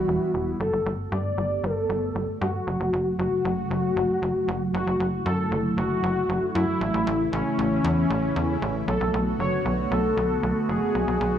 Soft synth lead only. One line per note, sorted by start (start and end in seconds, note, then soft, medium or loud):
0.00 0.50 F#4 loud
0.60 0.93 A4 loud
1.12 1.65 D5 medium
1.64 2.31 A4 loud
2.41 3.09 F#4 loud
3.19 4.64 F#4 loud
4.74 5.06 F#4 loud
5.26 5.58 A4 medium
5.78 6.45 F#4 loud
6.55 7.22 E4 loud
7.33 8.78 C#4 loud
8.88 9.20 A4 loud
9.40 9.72 C#5 loud
9.91 10.59 A4 loud
10.69 11.36 G#4 loud